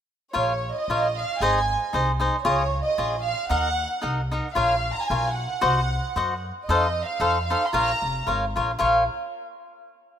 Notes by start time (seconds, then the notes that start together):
0.33 A#1 F4 A#4 C#5 F5
0.77 D#5
0.88 A#1 F4 A#4 C#5 F5
1.18 F5
1.40 G#1 D#4 G#4 C5 D#5 G#5
1.93 C2 D#4 G#4 C5 D#5
2.20 D#4 G#4 C5 D#5
2.43 C#2 F4 G#4 C#5 D#5
2.82 D#5
2.98 A#1 F4 G#4 C#5 D#5
3.24 F5
3.50 D#2 D#4 A#4 D#5 F#5
4.02 C2 D#4 A#4 D#5 F#5
4.31 D#4 A#4 D#5 F#5
4.55 A#1 F4 A#4 C#5 F5
4.94 A#5
5.05 G#5
5.10 B1 F4 A#4 C#5 F5
5.36 F#5
5.61 C2 F#4 C5 D#5 F#5
6.16 F#2 F#4 C5 D#5 F#5
6.67 F2 D#4 A4 C5 D#5 F5
7.04 F5
7.20 F2 D#4 A4 C5 F5
7.46 F5
7.50 D#4 A4 C5 F5
7.66 C6
7.72 A#1 F4 A#4 C#5 F5 A#5
8.02 F1
8.27 G#1 F4 A#4 C#5 F5
8.56 A#1 F4 A#4 C#5 F5
8.79 A#1 F4 A#4 C#5 F5